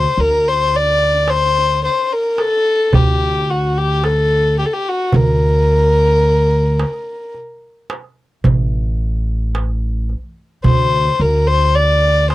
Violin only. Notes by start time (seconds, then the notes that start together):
Already playing: C5
0.20 A#4
0.48 C5
0.76 D5
1.30 C5
1.85 C5
2.13 A#4
2.40 A4
2.95 G4
3.50 F#4
3.78 G4
4.05 A4
4.59 G4
4.66 A4
4.73 G4
4.89 F#4
5.16 A#4
10.65 C5
11.21 A#4
11.47 C5
11.75 D5
12.31 C5